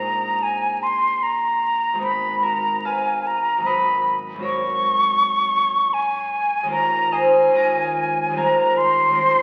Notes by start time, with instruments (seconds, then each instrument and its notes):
Already playing: harp A#1 G#3 C4 D#4 G#4 A#4 C5 D#5, flute A#5
0.43 flute G#5
0.83 flute C6
1.23 flute A#5
1.93 harp G#1 G#3 B3
1.99 harp D#4 A#4, flute B5
2.43 harp F#4 A#4, flute A#5
2.85 harp B4 F5, flute G#5
3.27 flute A#5
3.58 harp G#1 F#3 B3
3.64 harp F#4 A#4 B4 D#5, flute B5
4.34 harp G#1 G#3
4.38 harp C#4 F#4 C#5
4.43 harp A#4, flute C#6
5.93 flute G#5
6.63 harp D#2 G#3 C#4
6.69 harp F4 A#4, flute A#5
7.12 harp C5 D#5, flute G#5
7.48 harp D#2 G#3 C#4
7.54 harp F4 A#4 F5 A#5
8.29 harp D#2 G3
8.33 harp C4 F4 A#4
8.37 harp F5 G#5, flute A#5
8.77 flute C6
9.08 harp D#2 G#3
9.12 harp C4 F4 A#4